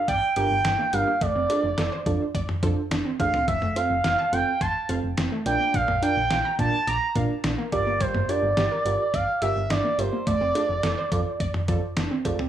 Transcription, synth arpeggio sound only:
0.08 D5
0.36 G4
0.65 D4
0.79 A#3
0.93 G3
1.07 A#3
1.21 A3
1.35 C4
1.50 D4
1.78 A4
1.92 C5
2.35 D5
2.63 A4
2.91 D4
3.05 C4
3.19 A3
3.34 C4
3.48 F3
3.62 A3
3.76 C4
4.04 F5
4.19 A5
4.61 C6
4.89 F5
5.18 C4
5.32 A3
5.46 F3
5.60 A#3
5.74 F3
5.88 A#3
6.02 D4
6.31 F5
6.45 A#5
6.87 D6
7.16 F5
7.44 D4
7.58 A#3
7.72 G3
7.87 A#3
8.01 G3
8.15 A#3
8.29 D4
8.57 G4
8.71 A#4
9.14 D5
9.42 G4
9.70 D4
9.84 A#3
9.99 G3
10.13 A#3
10.27 A3
10.41 C4
10.55 D4
10.84 A4
10.98 C5
11.40 D5
11.69 A4
11.97 D4
12.11 C4
12.25 A3
12.39 C4

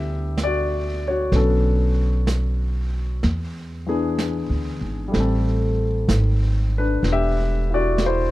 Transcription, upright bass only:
Already playing: D2
1.32 B1
3.24 E2
4.49 D2
4.81 G#1
5.14 A1
6.08 G#1
7.03 E1

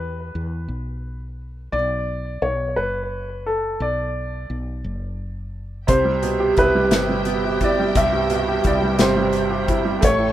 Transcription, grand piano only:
Already playing: B4
1.72 D5
2.42 C#5
2.76 B4
3.46 A4
3.82 D5
5.89 C5
6.59 B4
7.64 D5
7.97 E5
8.67 D5
9.02 C5
10.04 C#5

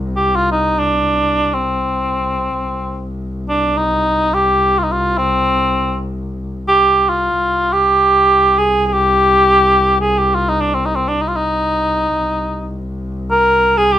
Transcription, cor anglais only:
0.16 G4
0.36 F4
0.51 D#4
0.79 D4
1.53 C4
3.49 D4
3.78 D#4
4.34 G4
4.79 F4
4.83 D#4
4.92 F4
5.18 C4
6.68 G4
7.09 F4
7.73 G4
8.58 G#4
8.86 G#4
8.93 G4
10.00 G#4
10.19 G4
10.34 F4
10.48 D#4
10.61 D4
10.74 C4
10.85 D#4
10.95 C4
11.08 D4
11.22 D#4
11.28 F4
11.35 D#4
13.30 A#4
13.77 G#4
13.92 G4

